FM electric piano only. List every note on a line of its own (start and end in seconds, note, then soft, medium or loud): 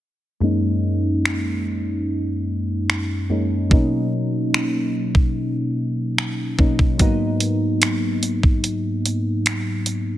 0.40 3.25 F#2 medium
0.40 3.26 G#3 medium
0.40 3.26 A#3 medium
0.40 3.26 C#4 medium
0.40 3.27 D#4 medium
3.29 3.71 F#2 medium
3.29 3.71 G#3 soft
3.29 3.70 A#3 soft
3.29 3.71 C#4 soft
3.29 3.72 D#4 medium
3.70 6.54 B2 medium
3.70 6.54 F#3 medium
3.70 6.55 A#3 medium
3.70 6.55 C#4 medium
3.70 6.56 D#4 medium
6.58 7.00 B2 medium
6.58 6.98 F#3 soft
6.58 6.99 A#3 soft
6.58 7.00 C#4 medium
6.58 7.00 D#4 medium
6.98 10.18 G#2 medium
6.98 10.18 F#3 medium
6.98 10.18 A#3 medium
6.98 10.18 B3 medium
6.98 10.18 D#4 medium